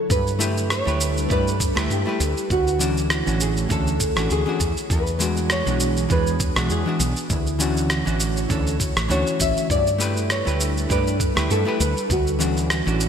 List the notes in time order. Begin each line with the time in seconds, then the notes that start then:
0.10 G2 G3 D4 E4 A4 B4, kick, shaker
0.27 shaker
0.39 A3 E4 G4 B4, shaker
0.57 shaker
0.70 C#5, cross-stick, shaker
0.85 D2 A3 E4 G4 B4, shaker
1.01 shaker
1.17 shaker
1.28 G2 A3 E4 G4 B4 D5, kick, shaker
1.47 shaker
1.60 kick, shaker
1.75 D2 A3 E4 G4 B4, cross-stick, shaker
1.90 G2 G4, shaker
2.05 A3 E4 G4 B4
2.20 D2, shaker
2.37 shaker
2.50 D2 D3 A3 F#4 C#5, kick, shaker
2.67 shaker
2.79 E3 C#4 D4 F#4, shaker
2.97 shaker
3.10 cross-stick, shaker
3.26 A1 E3 C#4 D4 F#4, shaker
3.40 G#4, shaker
3.57 shaker
3.69 D2 E3 C#4 D4 A4, kick, shaker
3.87 shaker
4.00 kick, shaker
4.16 A1 E3 C#4 D4 F#4, cross-stick, shaker
4.30 D2 G#4, shaker
4.46 E3 C#4 D4 F#4
4.60 E2 E3 B3 D4 F#4 G#4, kick, shaker
4.77 shaker
4.90 E2 B4, kick, shaker
5.07 shaker
5.19 E3 G#3 D4 F#4, shaker
5.37 shaker
5.50 C#5, cross-stick, shaker
5.65 B1 E3 G#3 D4 F#4, shaker
5.80 shaker
5.97 shaker
6.09 E2 E3 G#3 D4 G#4 B4, kick, shaker
6.27 shaker
6.40 kick, shaker
6.55 B1 E3 G#3 D4 F#4, cross-stick, shaker
6.70 E2 G#4, shaker
6.86 E3 G#3 D4 F#4
7.00 B1, shaker
7.16 shaker
7.30 D2 D3 A3 E4 F#4 C#5, kick, shaker
7.47 shaker
7.59 E3 C#4 D4 F#4, shaker
7.77 shaker
7.90 cross-stick, shaker
8.05 A1 E3 C#4 D4 F#4, shaker
8.20 shaker
8.37 shaker
8.49 D2 E3 C#4 D4 A4, kick, shaker
8.67 shaker
8.80 kick, shaker
8.96 A1, cross-stick, shaker
9.09 D2 E3 C#4 D4 F#4 C#5, shaker
9.27 shaker
9.40 A1 E5, kick, shaker
9.57 shaker
9.70 G2 G3 D4 A4 B4 D5, kick, shaker
9.87 shaker
9.98 A3 E4 G4 B4, shaker
10.17 shaker
10.30 C#5, cross-stick, shaker
10.45 D2 A3 E4 G4 B4, shaker
10.60 shaker
10.77 shaker
10.89 G2 A3 E4 G4 B4 D5, kick, shaker
11.07 shaker
11.20 kick, shaker
11.35 D2 A3 E4 G4 B4, cross-stick, shaker
11.50 G2 A4, shaker
11.65 A3 E4 G4 B4
11.80 D2 B4, shaker
11.97 shaker
12.10 D2 D3 A3 E4 F#4 C#5, kick, shaker
12.27 shaker
12.39 E3 C#4 D4 F#4, shaker
12.57 shaker
12.70 cross-stick, shaker
12.86 A1 E3 C#4 D4 F#4, shaker
13.00 shaker